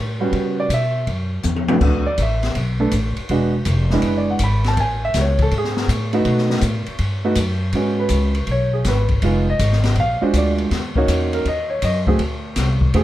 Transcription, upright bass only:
Already playing: A2
0.32 C#3
0.69 B2
1.07 F#2
1.44 E2
1.81 D2
2.18 A1
2.55 B1
2.92 A1
3.18 muted upright bass stroke
3.30 E1
3.66 F1
4.03 F#1
4.40 G#1
4.77 A1
5.14 C#2
5.51 G#2
5.88 A2
6.25 B2
6.62 A2
6.87 muted upright bass stroke
6.99 G2
7.36 F#2
7.73 G#2
8.10 C#2
8.47 B1
8.85 G#1
9.22 F1
9.59 G#1
9.96 A#1
10.22 muted upright bass stroke
10.33 D2
10.71 D#2
11.08 E2
11.45 D#2
11.83 F#2
12.19 D2
12.56 C2
12.94 E2

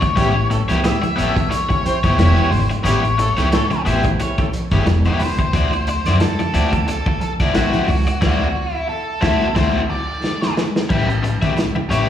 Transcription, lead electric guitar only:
Already playing: C#5
0.84 E5
1.50 C#5
2.17 C#5
2.50 C5
2.83 C#5
5.19 C5
6.20 A4
6.88 A4
7.21 A4
7.55 F#4
8.22 F#4
8.74 E4
8.89 A4
9.57 C5
9.90 D5
11.90 C#5

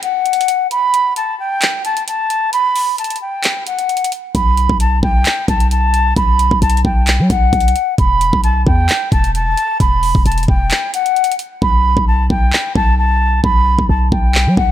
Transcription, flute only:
0.03 F#5
0.71 B5
1.17 A5
1.39 G5
1.85 A5
2.07 A5
2.53 B5
2.98 A5
3.21 G5
3.67 F#5
4.35 B5
4.80 A5
5.03 G5
5.48 A5
5.71 A5
6.16 B5
6.62 A5
6.85 G5
7.30 F#5
7.98 B5
8.44 A5
8.66 G5
9.12 A5
9.35 A5
9.80 B5
10.26 A5
10.49 G5
10.94 F#5
11.62 B5
12.08 A5
12.30 G5
12.75 A5
12.98 A5
13.44 B5
13.89 A5
14.12 G5
14.57 F#5

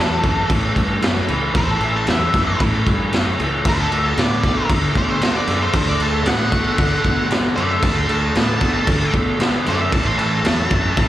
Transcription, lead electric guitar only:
Already playing: A4
1.57 C5
1.70 A4
1.84 E5
1.96 A5
2.10 E5
3.68 C5
3.80 A4
3.92 E5
4.06 A5
4.19 D5
4.98 D5
5.09 C5
5.36 D5
5.62 C5
5.89 D5
6.02 A5
6.27 F#5
7.56 D5
7.70 E5
7.84 A5
7.98 C6
8.11 A5
9.68 D5
9.81 E5
9.93 A5
10.06 C6
10.19 A5

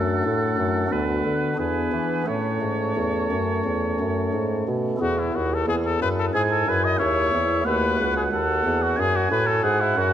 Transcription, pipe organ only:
Already playing: F#2 A3 D4 F#4
0.25 A2
0.57 F#2
0.87 B3 D4 F#4
0.91 D2
1.25 D3
1.54 B3 D4 G#4
1.59 E2
1.92 E3
2.23 A3 C#4 A4
2.27 A2
2.62 G#2
2.97 E2
3.32 F#2
3.65 E2
4.00 F#2
4.34 G#2
4.68 B2
4.97 B3 E4 G#4
5.01 E2
5.34 D#2
5.67 E2
6.01 F#2
6.34 G#2
6.67 F#2
7.00 D#2
7.33 E2
7.62 A3 F#4
7.67 D#2
7.99 C#2
8.32 D#2
8.65 E2
8.98 F#2
9.30 A2
9.63 G#2
9.96 F#2

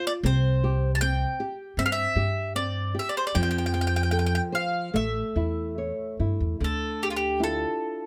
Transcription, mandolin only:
0.07 D5
0.26 C5
0.95 A5
1.01 G5
1.79 E5
1.86 F5
1.92 E5
2.56 D5
2.99 E5
3.09 D5
3.17 C5
3.27 D5
3.35 G5
3.43 G5
3.51 G5
3.58 G5
3.66 G5
3.74 G5
3.81 G5
3.87 G5
3.96 G5
4.03 G5
4.11 G5
4.19 G5
4.26 G5
4.35 G5
4.55 F5
4.96 E5
6.64 A4
7.03 G4
7.10 F4
7.17 G4
7.44 A4

